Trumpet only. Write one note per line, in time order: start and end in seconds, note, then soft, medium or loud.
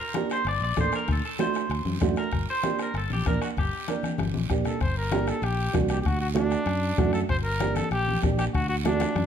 4.66 4.80 A4 medium
4.81 4.96 C5 medium
4.97 5.31 A#4 medium
5.29 5.45 A4 medium
5.44 5.74 G4 medium
5.91 6.00 G4 medium
6.01 6.08 G4 medium
6.07 6.20 F#4 medium
6.21 6.28 F#4 medium
6.36 7.10 D4 medium
7.13 7.21 A4 medium
7.30 7.37 C5 medium
7.44 7.77 A#4 medium
7.75 7.91 A4 medium
7.92 8.21 G4 loud
8.38 8.45 G4 medium
8.54 8.68 F#4 medium
8.69 8.76 F#4 medium
8.86 9.26 D4 medium